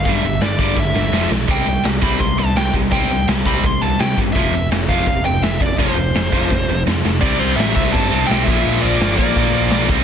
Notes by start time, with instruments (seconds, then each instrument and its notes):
0.05 picked electric bass G1, distorted electric guitar G2 D3 G3, lead electric guitar E5, kick, open hi-hat
0.23 picked electric bass G1, distorted electric guitar G2 D3, open hi-hat
0.41 picked electric bass G1, distorted electric guitar G2 D3, lead electric guitar D5, snare, open hi-hat
0.59 picked electric bass G1, distorted electric guitar G2 D3 G3, lead electric guitar D5, kick, open hi-hat
0.76 picked electric bass G1, distorted electric guitar G2 D3, lead electric guitar E5, kick, snare
0.94 picked electric bass G1, distorted electric guitar G2 D3, snare
1.12 picked electric bass F1, distorted electric guitar F2 C3 F3, snare
1.30 picked electric bass B1, distorted electric guitar F2 C3, snare
1.48 picked electric bass C2, distorted electric guitar C3 G3 C4, lead electric guitar G5, kick, open hi-hat
1.66 picked electric bass C2, distorted electric guitar C3 G3, open hi-hat
1.84 picked electric bass C2, distorted electric guitar C3 G3, snare, open hi-hat
2.02 picked electric bass C2, distorted electric guitar C3 G3 C4, lead electric guitar B5, kick, open hi-hat
2.20 picked electric bass C2, distorted electric guitar C3 G3, lead electric guitar C6, kick, open hi-hat
2.37 picked electric bass C2, distorted electric guitar C3 G3, lead electric guitar A5, open hi-hat
2.55 picked electric bass C2, distorted electric guitar C3 G3, lead electric guitar G5, snare, open hi-hat
2.73 picked electric bass C2, distorted electric guitar C3 G3, kick, open hi-hat
2.92 picked electric bass C2, distorted electric guitar C3 G3 C4, lead electric guitar G5, kick, open hi-hat
3.10 picked electric bass C2, distorted electric guitar C3 G3, open hi-hat
3.27 picked electric bass C2, distorted electric guitar C3 G3, snare, open hi-hat
3.45 picked electric bass C2, distorted electric guitar C3 G3 C4, lead electric guitar B5, kick, open hi-hat
3.64 picked electric bass C2, distorted electric guitar C3 G3, lead electric guitar C6, kick, open hi-hat
3.81 picked electric bass C2, distorted electric guitar C3 G3, lead electric guitar A5, open hi-hat
3.99 distorted electric guitar C3 G3, picked electric bass C3, lead electric guitar G5, snare, open hi-hat
4.17 picked electric bass G2, distorted electric guitar C3 G3, kick, open hi-hat
4.33 picked electric bass F1, distorted electric guitar F2 C3, lead electric guitar E5, kick, open hi-hat
4.37 distorted electric guitar F3
4.52 picked electric bass F1, distorted electric guitar F2 C3, open hi-hat
4.71 picked electric bass F1, distorted electric guitar F2 C3, snare, open hi-hat
4.89 picked electric bass F1, distorted electric guitar F2 C3 F3, lead electric guitar F5, kick, open hi-hat
5.07 picked electric bass F1, distorted electric guitar F2 C3, kick, open hi-hat
5.24 picked electric bass F1, distorted electric guitar F2 C3, lead electric guitar G5, open hi-hat
5.42 picked electric bass F1, distorted electric guitar F2 C3, lead electric guitar E5, snare, open hi-hat
5.60 picked electric bass F1, distorted electric guitar F2 C3, lead electric guitar D5, kick, open hi-hat
5.78 picked electric bass F1, distorted electric guitar F2 C3 F3, lead electric guitar C5, kick, open hi-hat
5.96 picked electric bass F1, distorted electric guitar F2 C3, open hi-hat
6.15 picked electric bass F1, distorted electric guitar F2 C3, snare, open hi-hat
6.32 picked electric bass F1, distorted electric guitar F2 C3 F3, kick, open hi-hat
6.50 picked electric bass F1, distorted electric guitar F2 C3, kick, snare
6.68 picked electric bass F1, distorted electric guitar F2 C3
6.87 distorted electric guitar F2 C3, picked electric bass F2, snare
7.05 picked electric bass F1, distorted electric guitar F2 C3, snare
7.21 picked electric bass C2, distorted electric guitar C3 G3, lead electric guitar D5, kick, crash
7.25 distorted electric guitar C4
7.39 picked electric bass C2, lead electric guitar C5, crash
7.56 picked electric bass A1, lead electric guitar E5, crash
7.60 snare
7.75 picked electric bass C2, lead electric guitar E5, kick, crash
7.92 picked electric bass G2, overdriven electric guitar C3 G3 C4, lead electric guitar A5, kick, crash
8.11 picked electric bass C2, distorted electric guitar G3 C4, crash
8.15 distorted electric guitar C3
8.27 picked electric bass B1, distorted electric guitar C3, lead electric guitar G5, crash
8.31 distorted electric guitar G3 C4, snare
8.43 lead electric guitar E5, kick, crash
8.48 picked electric bass A#1, distorted electric guitar A#2 F3 A#3
8.66 picked electric bass A#1, crash
8.81 picked electric bass A#1, lead electric guitar D5, crash
9.00 picked electric bass G1, snare, crash
9.17 picked electric bass A#1, overdriven electric guitar A#2 F3 A#3, lead electric guitar D5, kick, crash
9.36 picked electric bass A#1, distorted electric guitar A#2 F3, kick, crash
9.40 distorted electric guitar A#3
9.53 picked electric bass A#1, distorted electric guitar A#2 F3 A#3, crash
9.70 picked electric bass B1, snare, crash
9.88 picked electric bass C2, distorted electric guitar C3 G3 C4, kick, crash